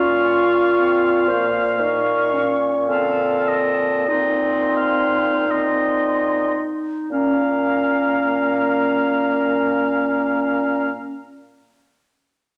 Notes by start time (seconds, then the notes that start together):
Already playing: A#2 C#4 F4 F5 C#6
0.79 C4
1.28 A#3 C5
1.79 D#4 A#4 C#6
2.33 C#4
2.88 C4 A4 F5 A5
3.48 D#5
4.08 C4 D#4 D#5 C6
4.77 F5
5.47 C4 D#5 C6
7.10 A#2 A#3 C#4 F5 A#5